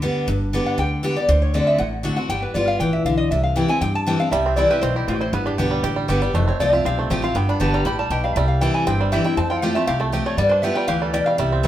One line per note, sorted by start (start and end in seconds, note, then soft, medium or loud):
0.02 0.26 D3 medium
0.02 0.26 G3 medium
0.02 0.27 B3 medium
0.02 0.27 G4 medium
0.27 0.58 G1 medium
0.27 0.76 G2 loud
0.53 0.77 D3 medium
0.53 0.77 G3 medium
0.53 0.77 B3 medium
0.53 0.78 G4 medium
0.66 0.78 F#5 loud
0.77 1.08 D2 medium
0.77 1.02 D3 medium
0.77 1.14 G5 loud
1.03 1.16 D3 medium
1.03 1.16 G3 medium
1.03 1.16 B3 medium
1.03 1.15 G4 medium
1.16 1.29 B3 medium
1.16 1.28 G4 medium
1.16 1.28 D5 loud
1.28 1.59 D2 medium
1.28 1.53 D3 medium
1.28 1.41 C5 medium
1.42 1.54 C#5 medium
1.54 1.78 D3 medium
1.54 1.78 A3 medium
1.54 1.78 C4 medium
1.54 1.79 F#4 medium
1.54 1.67 D5 medium
1.67 1.79 E5 loud
1.78 2.10 A1 medium
1.78 2.27 A2 medium
1.78 1.87 F#5 loud
2.03 2.16 D3 medium
2.03 2.17 A3 medium
2.03 2.17 C4 medium
2.03 2.15 F#4 loud
2.16 2.29 C4 soft
2.16 2.29 F#4 medium
2.16 2.29 F#5 loud
2.29 2.44 G1 medium
2.29 2.54 G3 loud
2.29 2.42 G5 loud
2.42 2.54 B4 medium
2.54 2.76 G1 medium
2.54 2.79 G3 medium
2.54 2.79 B3 medium
2.54 2.80 F4 medium
2.54 2.67 D5 medium
2.68 2.79 F5 loud
2.80 3.01 A1 medium
2.80 3.04 E3 medium
2.80 2.93 G5 loud
2.93 3.05 E5 loud
3.05 3.27 B1 medium
3.05 3.30 D3 medium
3.05 3.17 F5 medium
3.17 3.30 D#5 loud
3.31 3.61 C2 medium
3.31 3.79 C3 medium
3.31 3.43 E5 medium
3.43 3.56 F5 medium
3.56 3.68 E3 medium
3.56 3.68 G3 medium
3.56 3.69 C4 medium
3.56 3.67 E4 medium
3.56 3.69 G5 medium
3.68 3.81 C4 medium
3.68 3.80 E4 medium
3.68 3.81 G#5 loud
3.81 4.12 G2 medium
3.81 4.30 G2 medium
3.81 3.94 G5 loud
3.95 4.07 A5 loud
4.06 4.19 E3 medium
4.06 4.19 G3 medium
4.06 4.20 C4 loud
4.06 4.18 E4 medium
4.06 4.19 G5 medium
4.20 4.32 C4 soft
4.20 4.31 E4 medium
4.20 4.31 F5 loud
4.31 4.62 C2 loud
4.31 4.80 C3 loud
4.31 4.68 G3 medium
4.31 4.55 E5 medium
4.46 4.81 C4 medium
4.56 4.69 E3 medium
4.56 4.70 G3 medium
4.56 4.70 C4 medium
4.56 4.93 E4 medium
4.56 4.70 E4 medium
4.56 4.69 D5 medium
4.70 4.83 C4 medium
4.70 4.82 E4 medium
4.70 4.95 G4 medium
4.70 4.81 B4 loud
4.82 5.04 B1 medium
4.82 5.07 B2 medium
4.82 5.07 C4 medium
4.82 4.95 C5 loud
4.96 5.08 E4 medium
4.96 5.31 G4 medium
5.08 5.29 A1 medium
5.08 5.32 A2 medium
5.08 5.33 C4 medium
5.08 5.21 G4 medium
5.21 5.33 E4 medium
5.21 5.33 C5 loud
5.33 5.48 G1 loud
5.33 5.81 G2 medium
5.33 5.69 B3 medium
5.33 5.46 B4 medium
5.46 5.81 D4 medium
5.46 5.54 G4 loud
5.58 5.80 B1 medium
5.58 5.82 D3 medium
5.58 5.83 G3 medium
5.58 5.83 B3 medium
5.58 5.82 G4 soft
5.58 5.83 G4 medium
5.71 5.95 G3 medium
5.83 6.05 A1 medium
5.83 6.07 D3 medium
5.83 6.08 G4 medium
5.96 6.21 G3 medium
6.08 6.30 G1 medium
6.08 6.21 D3 medium
6.08 6.21 G3 medium
6.08 6.22 B3 loud
6.08 6.34 G4 medium
6.08 6.20 G4 loud
6.22 6.34 G3 medium
6.22 6.34 B3 medium
6.22 6.33 G4 medium
6.34 6.49 F1 medium
6.34 6.82 F2 loud
6.34 6.70 A3 medium
6.34 6.47 C5 medium
6.48 6.82 C4 medium
6.48 6.60 C#5 medium
6.59 6.81 C2 medium
6.59 6.95 F3 medium
6.59 6.72 F3 medium
6.59 6.72 A3 medium
6.59 6.73 C4 medium
6.59 6.72 F4 loud
6.59 6.73 D5 loud
6.73 6.85 C4 medium
6.73 6.84 F4 medium
6.73 7.08 F4 medium
6.73 6.84 E5 loud
6.85 7.06 B1 medium
6.85 7.33 C3 medium
6.85 7.21 C4 medium
6.85 6.98 F5 loud
6.99 7.33 A3 medium
6.99 7.10 A4 medium
7.10 7.31 A1 medium
7.10 7.22 F3 medium
7.10 7.23 A3 medium
7.10 7.23 C4 medium
7.10 7.21 F4 loud
7.10 7.35 G4 medium
7.10 7.23 C5 medium
7.22 7.35 C4 medium
7.22 7.34 F4 medium
7.22 7.35 F4 medium
7.22 7.35 F5 loud
7.35 7.50 G1 medium
7.35 7.83 G2 medium
7.35 7.71 B3 medium
7.35 7.48 G5 loud
7.49 7.84 D4 medium
7.49 7.60 B5 loud
7.60 7.81 G1 medium
7.60 7.84 D3 medium
7.60 7.84 G3 medium
7.60 7.84 B3 medium
7.60 7.85 G4 medium
7.60 7.73 A5 loud
7.74 7.98 G3 medium
7.74 7.85 A#5 loud
7.85 8.07 A1 medium
7.85 8.09 A2 medium
7.85 8.10 G4 medium
7.85 7.98 B5 loud
7.99 8.23 G3 medium
7.99 8.11 A5 loud
8.10 8.32 B1 medium
8.10 8.35 B2 medium
8.10 8.36 G4 medium
8.10 8.24 G5 medium
8.24 8.36 G3 medium
8.24 8.36 F5 loud
8.36 8.66 C2 medium
8.36 8.84 C3 medium
8.36 8.72 G3 medium
8.36 8.48 E5 medium
8.48 8.60 F5 medium
8.61 8.85 E3 medium
8.61 8.97 E3 medium
8.61 8.86 G3 medium
8.61 8.86 C4 medium
8.61 8.86 E4 medium
8.61 8.74 G5 medium
8.74 9.10 E4 medium
8.74 8.86 G#5 loud
8.86 9.17 G1 medium
8.86 9.35 G2 medium
8.86 9.22 C4 medium
8.86 8.99 G5 loud
9.00 9.35 G3 medium
9.00 9.12 C5 medium
9.12 9.24 E3 medium
9.12 9.24 G3 medium
9.12 9.24 C4 medium
9.12 9.23 E4 medium
9.12 9.37 G4 medium
9.12 9.24 E5 medium
9.24 9.37 C4 soft
9.24 9.36 E4 medium
9.24 9.37 E4 medium
9.24 9.37 G5 loud
9.37 9.67 F2 medium
9.37 9.85 F2 medium
9.37 9.73 C4 medium
9.37 9.49 A5 loud
9.50 9.86 F4 medium
9.50 9.62 G5 loud
9.62 9.75 F3 medium
9.62 9.75 A3 medium
9.62 9.75 C4 medium
9.62 9.74 F4 loud
9.62 9.86 G4 medium
9.62 9.75 F5 medium
9.75 9.99 A3 medium
9.75 9.88 C4 medium
9.75 9.87 F4 medium
9.75 9.87 E5 loud
9.87 10.18 C2 medium
9.87 10.36 C3 medium
9.87 10.12 G4 medium
9.87 10.00 F5 loud
10.00 10.25 A3 medium
10.00 10.07 A4 medium
10.12 10.37 F3 medium
10.12 10.37 A3 medium
10.12 10.37 C4 medium
10.12 10.37 F4 loud
10.12 10.38 G4 medium
10.26 10.38 A3 medium
10.26 10.37 C#5 loud
10.37 10.68 G2 loud
10.37 10.62 G3 loud
10.37 10.74 B3 medium
10.37 10.50 D5 loud
10.49 10.86 D4 medium
10.49 10.62 C5 medium
10.62 10.87 G3 medium
10.62 10.88 B3 medium
10.62 10.88 F4 loud
10.62 10.88 G4 medium
10.62 10.75 E5 medium
10.75 11.01 G3 medium
10.75 10.87 G5 loud
10.87 11.18 D2 medium
10.87 11.12 E3 medium
10.87 11.13 G4 medium
10.87 11.01 F5 loud
11.02 11.27 G3 medium
11.02 11.14 A4 medium
11.13 11.38 B2 medium
11.13 11.68 G4 medium
11.13 11.26 D5 medium
11.26 11.39 G3 medium
11.26 11.38 F5 loud
11.38 11.68 C2 loud
11.38 11.68 C3 medium
11.38 11.68 G3 medium
11.38 11.68 E5 medium
11.52 11.68 C4 medium
11.63 11.68 E3 medium
11.63 11.68 A3 medium
11.63 11.68 C4 medium